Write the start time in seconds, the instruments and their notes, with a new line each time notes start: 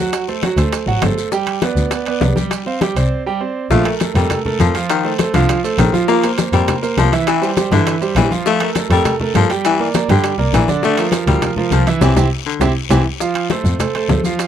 Already playing: grand piano F#3
0.00 grand piano F#4 F#5
0.13 high bongo, high timbale, long guiro, maracas
0.28 grand piano A3 A4 C5, high bongo, high conga, maracas
0.42 grand piano F#3 F#4 F#5, high bongo, high conga, high timbale, low timbale, short guiro, maracas
0.57 double bass D2, grand piano A3 A4 C5, high conga, high timbale, short guiro, maracas
0.72 high bongo, high conga, high timbale, long guiro, maracas
0.87 double bass A1, grand piano F#3 F#4 F#5, high bongo, high conga, maracas
1.02 double bass G1, grand piano A3 A4 C5, high bongo, low bongo, high conga, high timbale, low timbale, short guiro, maracas
1.17 high bongo, high conga, short guiro, maracas
1.32 grand piano G3 G4 G5, high bongo, high conga, long guiro, maracas
1.47 high conga, high timbale, maracas
1.62 grand piano B3 B4 D5, high bongo, high conga, high timbale, low timbale, short guiro, maracas
1.76 double bass D2, high conga, short guiro, maracas
1.91 grand piano B3 B4 D5, high bongo, high conga, high timbale, long guiro, maracas
2.06 grand piano B3 B4 D5, high conga, high timbale, maracas
2.21 double bass C2, high bongo, low bongo, high conga, low timbale, short guiro, maracas
2.36 grand piano G3 G4 G5, high conga, short guiro, maracas
2.51 high bongo, high conga, high timbale, long guiro, maracas
2.66 grand piano C4 C5 F5, high bongo, high conga, maracas
2.81 grand piano G3 G4 G5, high bongo, high conga, high timbale, low timbale, short guiro, maracas
2.96 double bass C2, grand piano C4 C5 D5, high conga, high timbale, short guiro, maracas
3.26 grand piano G3 G4 G5
3.40 grand piano C4 C5 D5
3.70 double bass A#1, grand piano F3 F4 F5, baritone saxophone A3, high bongo, high conga, long guiro, maracas
3.85 grand piano A3 A4 A#4, high bongo, high conga, high timbale
4.00 high bongo, high conga, high timbale, short guiro, maracas
4.15 double bass F2, baritone saxophone G3, grand piano A3 A4 A#4, high timbale, short guiro, maracas
4.30 high bongo, high conga, low conga, high timbale, long guiro, maracas
4.45 grand piano A3 A4 A#4, high bongo, high conga, low conga
4.59 double bass F2, baritone saxophone F3, high bongo, low bongo, high conga, high timbale, short guiro, maracas
4.75 grand piano F3 F4 F5, high bongo, high conga, high timbale, short guiro, maracas
4.89 baritone saxophone D#3, high bongo, high conga, high timbale, long guiro, maracas
5.04 grand piano A3 A4 C5, high bongo, high conga
5.19 grand piano A3 A4 C5, high bongo, high conga, high timbale, short guiro, maracas
5.34 double bass C2, baritone saxophone D3, grand piano F3 F4 F5, high conga, high timbale, short guiro, maracas
5.49 high bongo, high conga, high timbale, long guiro, maracas
5.64 grand piano A3 A4 C5, high bongo, high conga, maracas
5.78 double bass A#1, baritone saxophone D#3, high bongo, low bongo, high conga, high timbale, low timbale, short guiro, maracas
5.93 grand piano F3 F4 F5, high bongo, high conga, short guiro, maracas
6.08 grand piano F3 F4 F5, baritone saxophone A#3, high bongo, high conga, long guiro, maracas
6.23 grand piano A#3 A#4 C5, high bongo, high conga, high timbale, maracas
6.38 high bongo, high conga, high timbale, short guiro, maracas
6.52 double bass F2, baritone saxophone G3, grand piano A#3 A#4 C5, high conga, high timbale, short guiro, maracas
6.68 high bongo, high conga, low conga, high timbale, long guiro, maracas
6.82 grand piano A#3 A#4 C5, high bongo, high conga, maracas
6.97 double bass C2, baritone saxophone F3, high bongo, low bongo, high conga, high timbale, low timbale, short guiro, maracas
7.12 grand piano E3 E4 E5, high bongo, high conga, high timbale, short guiro, maracas
7.27 baritone saxophone E3, high bongo, high conga, high timbale, long guiro, maracas
7.42 grand piano G3 G4 C5, high bongo, high conga, maracas
7.57 grand piano G3 G4 C5, high bongo, high conga, high timbale, short guiro, maracas
7.71 double bass G2, baritone saxophone D3, grand piano E3 E4 E5, high conga, high timbale, short guiro, maracas
7.87 high bongo, high conga, high timbale, long guiro, maracas
8.01 grand piano G3 G4 C5, high bongo, high conga, maracas
8.16 double bass A#1, baritone saxophone E3, high bongo, low bongo, high conga, high timbale, low timbale, short guiro, maracas
8.31 grand piano F3 F4 F5, high bongo, high conga, short guiro, maracas
8.46 grand piano F3 F4 F5, baritone saxophone A3, high bongo, high conga, long guiro, maracas
8.60 grand piano A3 A4 A#4, high bongo, high conga, high timbale
8.75 high bongo, high conga, high timbale, short guiro, maracas
8.90 double bass F2, baritone saxophone G3, grand piano A3 A4 A#4, high timbale, short guiro, maracas
9.05 high bongo, high conga, low conga, high timbale, long guiro, maracas
9.20 grand piano A3 A4 A#4, high bongo, high conga, low conga
9.34 double bass G2, baritone saxophone F3, high bongo, low bongo, high conga, high timbale, low timbale, short guiro, maracas
9.50 grand piano G3 G4 G5, high bongo, high conga, high timbale, short guiro, maracas
9.65 baritone saxophone E3, high bongo, high conga, high timbale, long guiro, maracas
9.79 grand piano A#3 A#4 D5, high bongo, high conga
9.94 grand piano A#3 A#4 D5, high bongo, high conga, high timbale, short guiro, maracas
10.09 double bass G2, baritone saxophone D3, grand piano G3 G4 G5, high conga, high timbale, short guiro, maracas
10.24 high bongo, high conga, high timbale, long guiro, maracas
10.38 double bass C2, grand piano A#3 A#4 D5, high bongo, high conga
10.53 double bass A#1, baritone saxophone E3, high bongo, low bongo, high conga, high timbale, short guiro, maracas
10.68 grand piano D3 D4 D5, high bongo, high conga, short guiro, maracas
10.82 grand piano D3 D4 D5, baritone saxophone A3, high bongo, high conga, long guiro, maracas
10.97 grand piano F3 F4 A#4, high bongo, high conga, high timbale, maracas
11.12 high bongo, high conga, high timbale, short guiro, maracas
11.27 double bass D2, grand piano F3 F4 A#4, baritone saxophone G3, high conga, high timbale, short guiro, maracas
11.41 high bongo, high conga, low conga, high timbale, long guiro, maracas
11.56 grand piano F3 F4 A#4, high bongo, high conga, low conga
11.71 double bass C2, baritone saxophone F3, high bongo, low bongo, high conga, high timbale, short guiro, maracas
11.86 grand piano E3 E4 E5, high bongo, high conga, high timbale, short guiro, maracas
12.01 double bass C2, baritone saxophone E3, grand piano C4 E4 G4, high bongo, low conga, high timbale, long guiro, maracas
12.16 double bass C2, grand piano C4 E4 G4, high bongo, low conga, high timbale, long guiro, maracas
12.46 baritone saxophone D3
12.60 double bass C2, grand piano C4 E4 G4, high bongo, low conga, high timbale, long guiro, maracas
12.90 double bass C2, baritone saxophone E3, grand piano C4 E4 G4, high bongo, low conga, high timbale, long guiro, maracas
13.20 grand piano F3 F4 F5, high bongo, high conga, long guiro, maracas
13.35 high conga, high timbale, maracas
13.50 grand piano A3 A4 C5, high bongo, high conga, high timbale, low timbale, short guiro, maracas
13.64 double bass F2, high conga, short guiro, maracas
13.79 grand piano A3 A4 C5, high bongo, high conga, low conga, high timbale, long guiro, maracas
13.94 grand piano A3 A4 C5, high conga, high timbale, maracas
14.09 double bass D2, high bongo, low bongo, high conga, low timbale, short guiro, maracas
14.23 grand piano F3 F4 F5, high conga, short guiro, maracas
14.39 high bongo, high conga, high timbale, long guiro, maracas